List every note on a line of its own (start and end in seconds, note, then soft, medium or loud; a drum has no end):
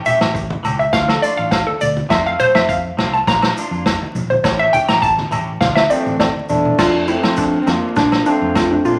0.05 0.20 E3 soft
0.05 0.21 A3 medium
0.05 0.21 C#4 medium
0.05 0.19 G4 medium
0.05 0.23 E5 loud
0.05 low conga medium
0.05 maracas loud
0.21 0.56 A1 medium
0.21 0.39 A3 soft
0.21 0.39 C#4 soft
0.21 0.38 G4 medium
0.21 snare medium
0.21 low agogo medium
0.35 kick medium
0.35 maracas medium
0.50 high conga medium
0.63 0.88 C#2 medium
0.63 0.82 E3 medium
0.63 0.83 C#4 medium
0.63 0.83 G4 medium
0.63 low conga medium
0.63 low agogo medium
0.63 maracas loud
0.79 0.93 E5 medium
0.79 maracas soft
0.93 1.17 D2 medium
0.93 1.11 F3 medium
0.93 1.11 A3 medium
0.93 1.12 D4 medium
0.93 1.12 F4 medium
0.93 1.08 F5 loud
0.93 kick medium
0.93 snare medium
0.93 maracas medium
1.08 1.22 A4 medium
1.08 snare medium
1.08 low agogo medium
1.22 1.38 A3 medium
1.22 1.38 D4 medium
1.22 1.35 F4 medium
1.22 1.37 D5 loud
1.22 maracas loud
1.36 1.62 A1 loud
1.36 1.56 A3 soft
1.36 1.55 D4 soft
1.36 1.54 F4 medium
1.36 1.50 F5 medium
1.36 maracas soft
1.51 1.66 F5 medium
1.51 kick medium
1.51 snare medium
1.51 low agogo medium
1.51 maracas medium
1.67 1.80 A4 medium
1.67 high conga medium
1.81 2.05 D2 medium
1.81 1.96 D5 medium
1.81 low conga medium
1.81 maracas medium
1.97 high conga medium
1.97 maracas soft
2.09 2.34 F2 medium
2.09 2.25 F3 medium
2.09 2.25 A3 medium
2.09 2.26 C4 medium
2.09 2.24 F4 medium
2.09 2.25 E5 medium
2.09 kick medium
2.09 snare medium
2.09 low agogo medium
2.09 maracas medium
2.26 2.38 A3 medium
2.26 2.39 C4 medium
2.26 2.40 F4 medium
2.26 2.40 F5 medium
2.38 2.54 F3 medium
2.38 2.54 A3 medium
2.38 2.55 C4 medium
2.38 2.53 F4 medium
2.38 2.54 C5 loud
2.38 low conga medium
2.38 maracas medium
2.55 2.91 F2 medium
2.55 2.73 A3 soft
2.55 2.73 C4 medium
2.55 2.72 F4 medium
2.55 2.68 E5 medium
2.55 snare medium
2.55 low agogo medium
2.69 3.10 F5 medium
2.69 kick medium
2.69 maracas medium
2.97 3.22 C2 medium
2.97 3.16 F3 medium
2.97 3.16 A3 medium
2.97 3.17 C4 medium
2.97 3.17 F4 medium
2.97 snare medium
2.97 low conga medium
2.97 low agogo medium
3.13 3.27 A5 medium
3.13 maracas soft
3.27 3.51 A#1 medium
3.27 3.46 A#3 medium
3.27 3.46 D4 medium
3.27 3.46 F4 medium
3.27 4.11 A#5 loud
3.27 muted clean electric guitar stroke medium
3.27 kick medium
3.27 snare medium
3.27 maracas medium
3.42 snare medium
3.42 low agogo medium
3.56 3.71 F3 medium
3.56 3.71 D4 medium
3.56 3.70 F4 medium
3.56 maracas loud
3.71 3.95 F2 medium
3.71 3.90 A#3 soft
3.71 3.89 D4 medium
3.71 3.88 F4 medium
3.71 maracas soft
3.86 kick medium
3.86 snare medium
3.86 low agogo medium
3.86 maracas medium
4.02 high conga medium
4.15 4.39 A#1 loud
4.15 low conga medium
4.15 maracas medium
4.30 4.44 C5 medium
4.30 high conga medium
4.30 maracas soft
4.44 4.68 A1 medium
4.44 4.60 E3 medium
4.44 4.60 A3 medium
4.44 4.60 C#4 medium
4.44 4.58 G4 medium
4.44 4.59 C#5 medium
4.44 kick loud
4.44 snare medium
4.44 low agogo medium
4.44 maracas medium
4.59 4.73 A3 soft
4.59 4.74 C#4 medium
4.59 4.73 G4 medium
4.59 4.73 E5 loud
4.73 4.89 E3 medium
4.73 4.89 A3 medium
4.73 4.88 C#4 medium
4.73 4.87 G4 medium
4.73 4.88 G5 loud
4.73 high conga medium
4.73 low conga medium
4.73 maracas medium
4.88 5.24 A1 medium
4.88 5.07 A3 medium
4.88 5.06 C#4 medium
4.88 5.06 G4 medium
4.88 5.02 A#5 loud
4.88 snare medium
4.88 low agogo medium
5.02 5.20 A5 loud
5.02 kick medium
5.02 maracas medium
5.17 snare soft
5.17 high conga medium
5.31 5.56 A1 medium
5.31 5.50 E3 medium
5.31 5.50 A3 medium
5.31 5.51 C#4 medium
5.31 5.51 G4 medium
5.31 low conga medium
5.31 low agogo medium
5.31 maracas loud
5.61 5.85 D2 medium
5.61 5.79 F3 medium
5.61 5.80 A3 medium
5.61 5.80 D4 medium
5.61 5.81 F4 medium
5.61 5.76 F5 medium
5.61 kick medium
5.61 snare medium
5.61 high conga medium
5.61 low conga medium
5.61 maracas medium
5.75 5.90 E5 loud
5.75 snare medium
5.75 low agogo medium
5.90 6.06 F3 medium
5.90 6.18 A3 medium
5.90 6.07 A3 medium
5.90 6.18 C4 medium
5.90 6.07 D4 medium
5.90 6.05 D5 medium
5.90 maracas loud
6.06 6.30 A1 loud
6.06 6.25 A3 medium
6.06 6.24 D4 medium
6.06 muted clean electric guitar stroke medium
6.06 high conga medium
6.06 maracas soft
6.19 6.28 A3 medium
6.19 6.27 C4 medium
6.19 6.62 D5 medium
6.19 kick medium
6.19 snare medium
6.19 high conga medium
6.19 low agogo medium
6.19 maracas medium
6.36 high conga medium
6.49 6.74 E2 loud
6.49 7.05 A3 medium
6.49 7.04 D4 medium
6.49 low conga medium
6.49 maracas loud
6.65 low conga medium
6.78 7.16 F2 medium
6.78 6.97 A3 medium
6.78 6.98 C4 medium
6.78 7.07 F4 medium
6.78 6.98 F4 medium
6.78 kick medium
6.78 snare medium
6.78 crash medium
6.78 low agogo medium
6.78 maracas loud
7.07 7.58 A3 medium
7.07 7.61 C4 medium
7.07 7.36 E4 medium
7.07 maracas medium
7.23 7.60 F3 medium
7.23 7.42 C4 soft
7.23 7.41 F4 medium
7.23 snare medium
7.23 low agogo medium
7.36 7.66 D4 medium
7.36 kick medium
7.36 maracas loud
7.62 7.68 C4 medium
7.67 7.80 F2 medium
7.67 8.23 F3 medium
7.67 7.85 A3 medium
7.67 8.27 A#3 medium
7.67 7.95 C4 medium
7.67 7.86 C4 medium
7.67 7.87 F4 medium
7.67 snare medium
7.67 low agogo medium
7.67 maracas medium
7.96 8.21 A#1 medium
7.96 8.15 F3 medium
7.96 8.15 A#3 medium
7.96 8.25 D4 medium
7.96 8.15 D4 medium
7.96 8.16 F4 medium
7.96 kick medium
7.96 snare medium
7.96 maracas loud
8.12 snare medium
8.12 low agogo medium
8.25 8.41 F3 medium
8.25 8.97 A3 medium
8.25 8.42 A#3 medium
8.25 8.99 C4 medium
8.25 8.41 D4 medium
8.25 8.42 D4 medium
8.25 8.40 F4 medium
8.25 maracas medium
8.42 8.77 F2 medium
8.42 8.61 A#3 soft
8.42 8.60 D4 soft
8.42 8.59 F4 medium
8.55 8.71 F4 medium
8.55 kick medium
8.55 snare medium
8.55 low agogo medium
8.55 maracas medium
8.71 8.85 D4 medium
8.85 8.99 A#1 medium
8.85 8.99 F3 soft
8.85 8.99 A#3 medium
8.85 8.99 D4 medium
8.85 8.99 F4 medium
8.85 maracas medium
8.89 8.99 F4 medium